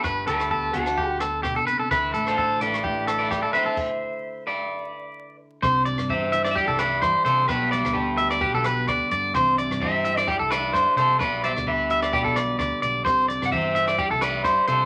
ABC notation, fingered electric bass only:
X:1
M:4/4
L:1/16
Q:"Swing 16ths" 1/4=129
K:G
V:1 name="Fingered electric bass" clef=bass
G,,,2 D,,4 D,,8 z2 | D,,2 A,,,4 A,,,8 z2 | z16 | C,,3 G,,6 C,,3 G,, z C,2 |
B,,,3 D,,6 B,,,3 D,, z G,,2 | C,,3 G,,6 C,,3 G,, z C,2 | B,,,3 D,,6 B,,,3 D,, z B,,,2 | C,,3 G,,6 C,,3 G,, z C,2 |]